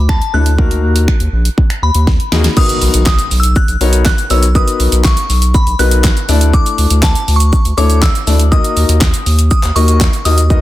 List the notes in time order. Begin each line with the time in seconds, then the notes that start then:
Already playing: D2
0.09 A5, finger snap, kick
0.22 closed hi-hat
0.34 D2 A3 D4 E4 A4 F#6
0.46 closed hi-hat
0.58 A#3 D#4 F#4 A#4, kick
0.71 closed hi-hat
0.83 D#2
0.96 closed hi-hat
1.08 finger snap, kick
1.20 D#2, closed hi-hat
1.33 A#1
1.45 closed hi-hat
1.58 kick
1.70 finger snap, closed hi-hat
1.82 D#2 B5
1.95 D#2, closed hi-hat
2.07 kick, snare
2.20 closed hi-hat
2.32 D#2 A#3 D#4 F#4 G#4, snare
2.44 snare, closed hi-hat
2.57 B3 D#4 F#4 A#4 B4 D#6, kick, crash, impact, shaker
2.69 closed hi-hat, shaker
2.82 B1, open hi-hat, shaker
2.94 B1, closed hi-hat, shaker
3.06 D#6, kick, snare, clap, shaker
3.19 closed hi-hat, shaker
3.31 B1, open hi-hat, shaker
3.40 E6, closed hi-hat, shaker
3.56 F#6, kick, shaker
3.68 B1, closed hi-hat, shaker
3.81 B1 B3 D#4 F#4 A#4 C#5, open hi-hat, shaker
3.93 closed hi-hat, shaker
4.06 F#6, kick, snare, clap, shaker
4.18 closed hi-hat, shaker
4.30 B1 B3 D#4 F#4 A#4 C#5 E6, open hi-hat, shaker
4.43 closed hi-hat, shaker
4.55 B3 D#4 F#4 A#4 B4 D#6, kick, shaker
4.68 closed hi-hat, shaker
4.80 B1, open hi-hat, shaker
4.92 B1, closed hi-hat, shaker
5.05 C#6, kick, snare, clap, shaker
5.17 closed hi-hat, shaker
5.30 B1, open hi-hat, shaker
5.42 closed hi-hat, shaker
5.54 B5, kick, shaker
5.67 B1, closed hi-hat, shaker
5.79 B1 B3 D#4 F#4 A#4 B4 F#6, open hi-hat, shaker
5.91 closed hi-hat, shaker
6.04 kick, snare, clap, shaker
6.17 closed hi-hat, shaker
6.28 D2 A3 D4 E4 A4 D5, open hi-hat, shaker
6.41 closed hi-hat, shaker
6.54 D6, kick, shaker
6.66 closed hi-hat, shaker
6.78 D2, open hi-hat, shaker
6.90 D2, closed hi-hat, shaker
7.03 A5, kick, snare, clap, shaker
7.15 closed hi-hat, shaker
7.28 D2, open hi-hat, shaker
7.36 C#6
7.40 closed hi-hat, shaker
7.53 kick, shaker
7.65 D2, closed hi-hat, shaker
7.77 D2 A3 D4 E4 A4 C#5 D6, open hi-hat, shaker
7.90 closed hi-hat, shaker
8.02 E6, kick, snare, clap, shaker
8.15 closed hi-hat, shaker
8.27 D2 A3 D4 E4 A4 D5, open hi-hat, shaker
8.39 closed hi-hat, shaker
8.51 A#3 D#4 F#4 A#4 D#5 D#6, kick, shaker
8.64 closed hi-hat, shaker
8.77 D#2, open hi-hat, shaker
8.89 D#2, closed hi-hat, shaker
9.01 kick, snare, clap, shaker
9.14 closed hi-hat, shaker
9.26 D#2, open hi-hat, shaker
9.39 closed hi-hat, shaker
9.51 D#6, kick, shaker
9.63 D#2, clap, closed hi-hat, shaker
9.76 D#2 A#3 D#4 F#4 A#4 D#5 C#6, open hi-hat, shaker
9.88 closed hi-hat, shaker
10.01 kick, snare, clap, shaker
10.13 closed hi-hat, shaker
10.25 D#2 A#3 D#4 F#4 A#4 D#5 D#6, open hi-hat, shaker
10.38 closed hi-hat, shaker
10.50 D#4 F#4 A#4 B4 D#5, kick, shaker